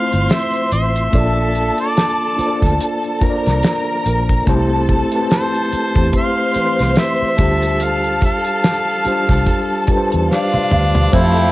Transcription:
0.00 1.15 A3 medium
0.00 1.16 C4 medium
0.00 1.16 E4 soft
0.00 1.14 F4 soft
0.00 1.10 C5 medium
0.00 1.16 C5 medium
0.00 0.33 F5 medium
0.00 1.11 C6 medium
0.12 0.28 G1 medium
0.12 closed hi-hat soft
0.29 0.72 E5 medium
0.29 snare medium
0.29 closed hi-hat medium
0.54 closed hi-hat soft
0.72 1.07 A1 medium
0.72 1.76 E5 medium
0.72 closed hi-hat medium
0.96 closed hi-hat soft
1.12 1.69 A#1 medium
1.12 2.04 A#3 medium
1.12 2.05 D4 medium
1.12 2.05 F4 medium
1.12 3.18 A4 medium
1.12 2.06 A4 medium
1.12 2.06 D5 medium
1.12 3.18 A5 medium
1.12 kick medium
1.12 closed hi-hat medium
1.55 closed hi-hat medium
1.78 2.59 D5 medium
1.78 closed hi-hat soft
1.97 snare medium
1.97 closed hi-hat medium
2.36 3.01 A#3 medium
2.36 3.01 D4 medium
2.36 3.02 F4 medium
2.36 3.02 A4 medium
2.36 2.47 C5 medium
2.36 muted fingered electric bass stroke soft
2.36 closed hi-hat medium
2.46 3.06 D5 medium
2.62 2.78 D2 medium
2.62 kick medium
2.62 snare soft
2.62 closed hi-hat soft
2.81 closed hi-hat medium
3.04 closed hi-hat soft
3.20 4.13 A#3 medium
3.20 4.13 D4 medium
3.20 4.13 F4 medium
3.20 4.44 A#4 medium
3.20 4.14 A#4 medium
3.20 3.30 C5 medium
3.20 4.44 A#5 medium
3.20 muted fingered electric bass stroke soft
3.20 kick medium
3.20 closed hi-hat medium
3.30 4.18 D5 medium
3.46 3.61 C2 medium
3.46 snare soft
3.46 closed hi-hat soft
3.63 snare medium
3.63 closed hi-hat medium
4.06 4.41 A#1 medium
4.06 closed hi-hat medium
4.29 kick medium
4.29 closed hi-hat soft
4.45 5.03 C2 medium
4.45 4.93 A3 medium
4.45 4.93 C4 medium
4.45 4.93 E4 medium
4.45 4.94 G4 medium
4.45 6.10 A4 medium
4.45 6.10 A5 medium
4.45 kick medium
4.45 closed hi-hat medium
4.49 4.94 C5 loud
4.89 kick medium
4.89 closed hi-hat medium
5.12 5.70 A3 medium
5.12 5.70 C4 medium
5.12 5.71 E4 medium
5.12 5.71 G4 medium
5.12 5.20 B4 soft
5.12 closed hi-hat soft
5.22 5.75 C5 medium
5.31 6.11 C5 medium
5.31 snare medium
5.31 closed hi-hat medium
5.54 closed hi-hat soft
5.73 muted fingered electric bass stroke soft
5.73 closed hi-hat medium
5.95 6.11 E2 medium
5.95 6.40 A3 medium
5.95 6.41 C4 medium
5.95 6.41 E4 medium
5.95 6.42 G4 medium
5.95 6.42 C5 medium
5.95 kick medium
5.95 closed hi-hat soft
6.13 7.37 C5 medium
6.13 7.37 C6 medium
6.13 kick medium
6.13 closed hi-hat medium
6.17 7.01 F5 medium
6.54 7.39 E3 medium
6.54 7.39 A3 medium
6.54 7.39 C4 soft
6.54 7.39 G4 medium
6.54 6.64 B4 soft
6.54 muted fingered electric bass stroke soft
6.54 closed hi-hat medium
6.64 7.41 C5 medium
6.79 6.95 C2 medium
6.79 snare soft
6.79 closed hi-hat soft
6.96 7.85 E5 medium
6.96 snare medium
6.96 closed hi-hat medium
7.22 muted fingered electric bass stroke soft
7.38 8.29 D2 medium
7.38 8.74 G3 medium
7.38 8.74 D4 medium
7.38 8.75 F4 medium
7.38 8.74 G4 medium
7.38 10.26 A4 medium
7.38 8.75 C5 medium
7.38 10.26 A5 medium
7.38 kick medium
7.38 closed hi-hat medium
7.62 closed hi-hat soft
7.80 8.24 F5 medium
7.80 closed hi-hat medium
8.04 closed hi-hat soft
8.22 9.86 F5 medium
8.22 kick medium
8.22 closed hi-hat medium
8.45 closed hi-hat soft
8.64 snare loud
8.64 closed hi-hat medium
9.04 9.68 G3 medium
9.04 9.69 D4 medium
9.04 9.69 F4 medium
9.04 9.69 G4 medium
9.04 9.70 C5 medium
9.04 muted fingered electric bass stroke soft
9.04 closed hi-hat medium
9.29 9.44 C2 medium
9.29 kick medium
9.29 snare soft
9.29 closed hi-hat soft
9.46 kick medium
9.46 closed hi-hat medium
9.87 10.79 G3 medium
9.87 10.80 D4 medium
9.87 10.81 F4 medium
9.87 10.81 G4 medium
9.87 9.97 B4 medium
9.87 muted fingered electric bass stroke soft
9.87 kick medium
9.87 closed hi-hat medium
9.97 10.84 C5 medium
10.12 10.28 E2 medium
10.12 closed hi-hat soft
10.30 11.11 D4 medium
10.30 11.12 F4 medium
10.30 11.11 F5 medium
10.30 snare soft
10.54 muted fingered electric bass stroke soft
10.54 high tom soft
10.71 11.08 D2 medium
10.71 mid tom medium
10.95 floor tom medium
11.12 11.52 F2 loud
11.12 11.52 F3 medium
11.12 11.52 G3 medium
11.12 11.52 A3 medium
11.12 11.31 C4 medium
11.12 11.52 C4 medium
11.12 11.31 E4 medium
11.12 11.52 E4 loud
11.12 11.52 G4 medium
11.12 11.52 A4 loud
11.12 11.32 A4 medium
11.12 11.52 C5 loud
11.12 11.52 F5 loud
11.12 kick loud
11.12 closed hi-hat medium
11.37 closed hi-hat soft

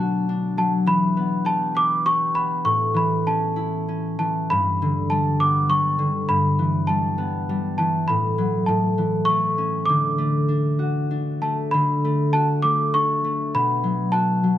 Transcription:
0.00 0.91 B2 medium
0.00 0.56 F#3 soft
0.00 2.13 A3 soft
0.00 0.28 D4 soft
0.00 1.51 F#4 soft
0.00 0.40 A4 soft
0.00 0.57 A5 medium
0.29 3.09 D4 soft
0.57 0.91 F#3 soft
0.57 0.71 A5 medium
0.86 2.70 E3 medium
0.86 1.48 B5 medium
1.17 2.34 B3 soft
1.45 2.05 G4 soft
1.45 1.77 A5 medium
1.75 3.80 B4 soft
1.75 2.07 D6 medium
2.06 4.41 G4 medium
2.06 2.36 C#6 medium
2.34 5.40 B3 medium
2.34 2.66 B5 medium
2.65 4.54 A2 medium
2.65 2.96 C#6 medium
2.94 4.18 E3 soft
2.94 3.24 B5 medium
3.27 3.88 C#4 soft
3.27 4.18 A5 medium
3.56 6.17 E4 soft
3.88 4.88 C#4 soft
4.19 4.54 E3 soft
4.19 4.50 A5 medium
4.50 6.28 G2 medium
4.50 5.12 B5 medium
4.82 5.97 D3 soft
5.10 5.69 G3 soft
5.10 5.38 A5 medium
5.40 7.17 B3 soft
5.40 5.71 D6 medium
5.70 6.04 G3 soft
5.70 6.25 C#6 medium
5.99 6.34 D3 soft
6.29 8.13 G2 medium
6.29 6.90 B5 medium
6.59 7.77 E3 soft
6.87 7.48 G3 soft
6.87 7.77 A5 medium
7.18 10.28 B3 soft
7.49 8.13 G3 soft
7.78 8.13 E3 soft
7.78 8.06 A5 medium
8.08 8.67 A2 medium
8.08 8.69 B5 medium
8.38 8.72 F#3 medium
8.66 9.92 A2 medium
8.66 9.28 A5 medium
8.98 9.92 E3 soft
9.25 10.18 A3 soft
9.25 9.88 C#6 medium
9.58 9.95 C#4 medium
9.86 11.73 D3 medium
9.86 11.05 D6 medium
10.18 11.41 A3 soft
10.48 11.10 D4 soft
10.79 12.33 F#4 soft
11.11 12.94 D4 soft
11.42 12.04 A3 soft
11.42 11.55 A5 medium
11.71 13.58 D3 medium
11.71 12.29 B5 medium
12.04 12.64 A3 soft
12.33 14.12 F#4 soft
12.33 12.47 A5 medium
12.62 13.24 A3 soft
12.62 12.94 D6 medium
12.94 14.58 D4 soft
12.94 13.49 C#6 medium
13.24 14.58 A3 soft
13.54 14.58 B2 medium
13.54 14.15 B5 medium
13.84 14.42 F#3 soft
14.12 14.58 F#4 soft
14.12 14.58 A5 medium
14.43 14.58 F#3 soft

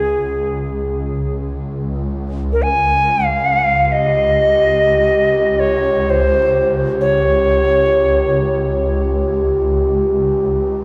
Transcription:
0.00 10.84 C#2 medium
0.00 1.34 G#4 medium
2.53 2.64 A#4 medium
2.62 3.26 G#5 medium
3.25 3.85 F5 medium
3.77 10.84 G4 medium
3.85 3.94 F5 medium
3.92 5.61 D#5 medium
5.60 6.11 C#5 medium
6.10 6.72 C5 medium
7.01 9.10 C#5 medium

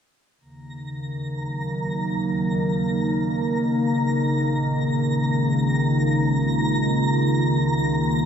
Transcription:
0.40 3.81 D#2 medium
0.40 8.25 C#3 medium
0.40 8.25 D#3 medium
0.40 8.25 A#3 medium
0.40 8.25 A#5 medium
0.40 8.25 A#6 medium
1.27 3.87 F#3 medium
1.27 7.27 A#4 medium
1.40 7.27 A#3 medium
1.98 5.19 D#4 medium
3.88 7.21 A#1 medium
4.78 8.25 G#3 medium
5.41 8.25 F4 medium
7.27 8.25 C#2 medium

